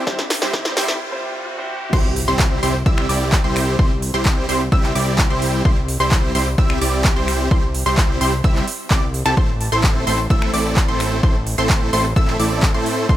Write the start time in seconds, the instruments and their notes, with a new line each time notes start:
Already playing: riser
0.06 analog synth bass C2, grand piano C3 G3 C4 E4 C5, supersaw synth G3 C4 E4 G4 C5, kick, snare
0.19 snare
0.30 snare, open hi-hat
0.41 analog synth bass C2, grand piano C3 G3 C4 E4 C5, supersaw synth G3 C4 E4 G4 C5, snare
0.53 kick, snare
0.65 snare
0.76 analog synth bass C2, grand piano C3 G3 C4 E4 C5, supersaw synth G3 C4 E4 G4 C5, snare, open hi-hat
0.88 snare
1.11 grand piano C3 G3 C4 E4 C5
1.58 grand piano C3 G3 C4 E4 C5
1.93 analog synth bass C2, supersaw synth G3 C4 E4 G4 C5, synth pluck C6, kick, crash, impact
2.16 open hi-hat
2.28 analog synth bass C2, supersaw synth G3 C4 E4 G4 C5, synth pluck C6
2.39 kick, clap
2.63 analog synth bass C2, supersaw synth G3 C4 E4 G4 C5, synth pluck C6, open hi-hat
2.86 analog synth bass C2, supersaw synth G3 C4 E4 G4 E5, synth pluck E6, kick
2.98 finger snap
3.09 analog synth bass C2, supersaw synth G3 C4 E4 G4 D5, synth pluck D6, open hi-hat
3.32 kick, clap
3.44 analog synth bass C2, supersaw synth G3 C4 E4 G4 C5, synth pluck C6
3.56 finger snap, open hi-hat
3.79 analog synth bass C2, supersaw synth G3 C4 E4 G4 C5, synth pluck C6, kick
4.02 open hi-hat
4.14 analog synth bass C2, supersaw synth G3 C4 E4 G4 C5, synth pluck C6
4.25 kick, clap
4.49 analog synth bass C2, supersaw synth G3 C4 E4 G4 C5, synth pluck C6, open hi-hat
4.72 analog synth bass C2, supersaw synth G3 C4 E4 G4 E5, synth pluck E6, kick
4.84 clap
4.95 analog synth bass C2, supersaw synth G3 C4 E4 G4 D5, synth pluck D6, open hi-hat
5.18 kick, clap
5.30 analog synth bass C2, supersaw synth G3 C4 E4 G4 C5, synth pluck C6
5.42 open hi-hat
5.65 analog synth bass C2, supersaw synth G3 C4 E4 G4 C5, synth pluck C6, kick
5.88 open hi-hat
6.00 analog synth bass C2, supersaw synth G3 C4 E4 G4 C5, synth pluck C6
6.11 kick, clap
6.35 analog synth bass C2, supersaw synth G3 C4 E4 G4 C5, synth pluck C6, open hi-hat
6.58 analog synth bass C2, supersaw synth G3 C4 E4 G4 E5, synth pluck E6, kick
6.70 finger snap
6.81 analog synth bass C2, supersaw synth G3 C4 E4 G4 D5, synth pluck D6, open hi-hat
7.04 kick, clap
7.16 analog synth bass C2, supersaw synth G3 C4 E4 G4 C5, synth pluck C6
7.28 finger snap, open hi-hat
7.51 analog synth bass C2, supersaw synth G3 C4 E4 G4 C5, synth pluck C6, kick
7.75 open hi-hat
7.86 analog synth bass C2, supersaw synth G3 C4 E4 G4 C5, synth pluck C6
7.98 kick, clap
8.21 analog synth bass C2, supersaw synth G3 C4 E4 G4 C5, synth pluck C6, open hi-hat
8.44 analog synth bass C2, supersaw synth G3 C4 E4 G4 E5, synth pluck E6, kick
8.56 clap
8.68 open hi-hat
8.91 analog synth bass C2, supersaw synth G3 C4 E4 G4 D5, synth pluck D6, kick, clap
9.14 open hi-hat
9.26 analog synth bass C2, supersaw synth G3 C4 E4 G4 A4, synth pluck A5, finger snap
9.37 analog synth bass A1, supersaw synth A3 C4 E4 A4 C5, synth pluck C6, kick
9.61 open hi-hat
9.72 analog synth bass A1, supersaw synth A3 C4 E4 A4 C5, synth pluck C6
9.84 kick, clap
10.07 analog synth bass A1, supersaw synth A3 C4 E4 A4 C5, synth pluck C6, open hi-hat
10.30 analog synth bass A1, supersaw synth A3 C4 E4 A4 E5, synth pluck E6, kick
10.42 finger snap
10.54 analog synth bass A1, supersaw synth A3 C4 E4 A4 D5, synth pluck D6, open hi-hat
10.77 kick, clap
10.88 analog synth bass A1, supersaw synth A3 C4 E4 A4 C5, synth pluck C6
11.00 finger snap, open hi-hat
11.23 analog synth bass A1, supersaw synth A3 C4 E4 A4 C5, synth pluck C6, kick
11.47 open hi-hat
11.58 analog synth bass A1, supersaw synth A3 C4 E4 A4 C5, synth pluck C6
11.70 kick, clap
11.93 analog synth bass A1, supersaw synth A3 C4 E4 A4 C5, synth pluck C6, open hi-hat
12.16 analog synth bass A1, supersaw synth A3 C4 E4 A4 E5, synth pluck E6, kick
12.28 clap
12.39 analog synth bass A1, supersaw synth A3 C4 E4 A4 D5, synth pluck D6, open hi-hat
12.63 kick, clap
12.74 analog synth bass A2, supersaw synth A3 C4 E4 A4 C5, synth pluck C6
12.86 open hi-hat
13.09 analog synth bass F1, supersaw synth A3 C4 F4 A4 C5, synth pluck C6, kick